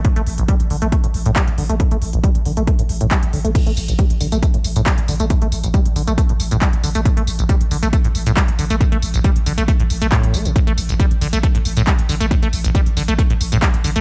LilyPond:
<<
  \new Staff \with { instrumentName = "Acid bass" } { \clef bass \time 4/4 \key g \mixolydian \tempo 4 = 137 a,16 a16 r16 a,,16 g16 r16 d16 a16 a16 a,16 r16 a,16 g16 r16 d16 a16 | a,16 a16 r16 a,,16 g16 r16 d16 a16 a16 a,16 r16 a,16 g16 r16 d16 a16 | a,16 a16 r16 a,,16 g16 r16 d16 a16 a16 a,16 r16 a,16 g16 r16 d16 a16 | a,16 a16 r16 a,,16 g16 r16 d16 a16 a16 a,16 r16 a,16 g16 r16 d16 a16 |
a,16 a16 r16 a,,16 g16 r16 d16 a16 a16 a,16 r16 a,16 g16 r16 d16 a16 | a,16 a16 r16 a,,16 g16 r16 d16 a16 a16 a,16 r16 a16 a,8 a16 c16 | a,16 a16 r16 a,,16 g16 r16 d16 a16 a16 a,16 r16 a,16 g16 r16 d16 a16 | a,16 a16 r16 a,,16 g16 r16 d16 a16 a16 a,16 r16 a,16 g16 r16 d16 a16 | }
  \new Staff \with { instrumentName = "808-style bass" } { \clef bass \time 4/4 \key g \mixolydian r16 a,,16 a,,16 a,,16 r16 a,,16 a,,16 a,,16 r16 a,,16 a,,16 a,,16 r16 a,,16 a,,16 a,,16 | r16 a,,16 a,,16 a,,16 r16 a,,16 a,,16 a,,16 r16 a,,16 a,,16 a,,16 r16 a,,16 a,,16 a,,16 | r16 a,,16 a,,16 a,,16 r16 a,,16 a,,16 a,,16 r16 a,,16 a,,16 a,,16 r16 a,,16 a,,16 a,,16 | r16 a,,16 a,,16 a,,16 r16 a,,16 a,,16 a,,16 r16 a,,16 a,,16 a,,16 r16 a,,16 a,,16 a,,16 |
r16 a,,16 a,,16 a,,16 r16 a,,16 a,,16 a,,16 r16 a,,16 a,,16 a,,16 r16 a,,16 a,,16 a,,16 | r16 a,,16 a,,16 a,,16 r16 a,,16 a,,16 a,,16 r16 a,,16 a,,16 a,,16 r16 a,,16 a,,16 a,,16 | r16 a,,16 a,,16 a,,16 r16 a,,16 a,,16 a,,16 r16 a,,16 a,,16 a,,16 r16 a,,16 a,,16 a,,16 | r16 a,,16 a,,16 a,,16 r16 a,,16 a,,16 a,,16 r16 a,,16 a,,16 a,,16 r16 a,,16 a,,16 a,,16 | }
  \new DrumStaff \with { instrumentName = "Drums" } \drummode { \time 4/4 <hh bd>16 hh16 hho16 hh16 <hh bd>16 hh16 hho16 hh16 <hh bd>16 hh16 hho16 hh16 <hc hh bd>16 hh16 hho16 hh16 | <hh bd>16 hh16 hho16 hh16 <hh bd>16 hh16 hho16 hh16 <hh bd>16 hh16 hho16 hh16 <hc hh bd>16 hh16 hho16 hh16 | <cymc hh bd tamb>16 hh16 <hho tamb>16 <hh tamb>16 <hh bd tamb>16 hh16 <hho tamb>16 <hh tamb>16 <hh bd tamb>16 hh16 <hho tamb>16 <hh tamb>16 <hc hh bd tamb>16 hh16 <hho tamb>16 <hh tamb>16 | <hh bd tamb>16 hh16 <hho tamb>16 <hh tamb>16 <hh bd tamb>16 hh16 <hho tamb>16 <hh tamb>16 <hh bd tamb>16 hh16 <hho tamb>16 <hh tamb>16 <hc hh bd tamb>16 hh16 <hho tamb>16 <hh tamb>16 |
<hh bd tamb>16 hh16 <hho tamb>16 <hh tamb>16 <hh bd tamb>16 hh16 <hho tamb>16 <hh tamb>16 <hh bd tamb>16 hh16 <hho tamb>16 <hh tamb>16 <hc hh bd tamb>16 hh16 <hho tamb>16 <hh tamb>16 | <hh bd tamb>16 hh16 <hho tamb>16 <hh tamb>16 <hh bd tamb>16 hh16 <hho tamb>16 <hh tamb>16 <hh bd tamb>16 hh16 <hho tamb>16 <hh tamb>16 <hc hh bd tamb>16 hh16 <hho tamb>16 <hh tamb>16 | <hh bd tamb>16 hh16 <hho tamb>16 <hh tamb>16 <hh bd tamb>16 hh16 <hho tamb>16 <hh tamb>16 <hh bd tamb>16 hh16 <hho tamb>16 <hh tamb>16 <hc hh bd tamb>16 hh16 <hho tamb>16 <hh tamb>16 | <hh bd tamb>16 hh16 <hho tamb>16 <hh tamb>16 <hh bd tamb>16 hh16 <hho tamb>16 <hh tamb>16 <hh bd tamb>16 hh16 <hho tamb>16 <hh tamb>16 <hc hh bd tamb>16 hh16 <hho tamb>16 <hh tamb>16 | }
>>